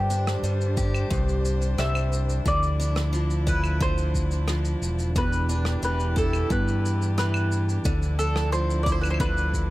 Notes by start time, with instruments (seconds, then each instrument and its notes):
Already playing: fingered electric bass G2, steel-string acoustic guitar G2 D3, string quartet G3 D4 C5, mandolin G4
0.10 steel-string acoustic guitar D4, shaker
0.27 cross-stick, shaker
0.43 fingered electric bass G2, steel-string acoustic guitar G3, shaker
0.61 shaker
0.77 steel-string acoustic guitar G4, kick, shaker
0.94 claves, shaker
1.10 fingered electric bass C2, steel-string acoustic guitar G2, kick, shaker
1.29 shaker
1.45 shaker
1.62 shaker
1.78 fingered electric bass C2, steel-string acoustic guitar G3, mandolin E5, cross-stick, shaker
1.95 claves, shaker
2.13 shaker
2.30 shaker
2.45 fingered electric bass D2, steel-string acoustic guitar D3, string quartet F3 E4, mandolin D5, kick, shaker
2.63 shaker
2.80 steel-string acoustic guitar D4, shaker
2.96 cross-stick, shaker
3.13 steel-string acoustic guitar F3, shaker
3.30 shaker
3.47 steel-string acoustic guitar E4, mandolin B4, kick, shaker
3.64 claves, shaker
3.80 steel-string acoustic guitar D3, mandolin C5, kick, shaker
3.98 shaker
4.15 kick, shaker
4.31 shaker
4.48 steel-string acoustic guitar F3, cross-stick, shaker
4.65 shaker
4.82 fingered electric bass E1, shaker
4.99 shaker
5.16 steel-string acoustic guitar E2, string quartet E3 D4 G4, mandolin B4, kick, shaker
5.33 shaker
5.49 steel-string acoustic guitar D4, shaker
5.65 cross-stick, shaker
5.83 fingered electric bass E1, steel-string acoustic guitar E3, mandolin B4, shaker
6.00 shaker
6.16 steel-string acoustic guitar E4, mandolin A4, kick, shaker
6.33 claves, shaker
6.50 steel-string acoustic guitar E2, fingered electric bass G2, mandolin B4, kick, shaker
6.68 shaker
6.86 shaker
7.02 shaker
7.18 steel-string acoustic guitar E3, mandolin B4, cross-stick, shaker
7.34 claves, shaker
7.52 shaker
7.69 shaker
7.85 fingered electric bass D2, steel-string acoustic guitar D3, string quartet F3 E4, kick, shaker
8.03 shaker
8.19 steel-string acoustic guitar D4, mandolin A4, shaker
8.36 cross-stick, shaker
8.52 steel-string acoustic guitar F3, mandolin C5, shaker
8.71 shaker
8.83 steel-string acoustic guitar E4, mandolin D5, kick
8.87 shaker
8.92 mandolin C5
9.01 mandolin B4, claves, shaker
9.10 mandolin C5, claves
9.20 steel-string acoustic guitar D3, mandolin B4, kick, shaker
9.25 claves
9.37 shaker
9.54 kick, shaker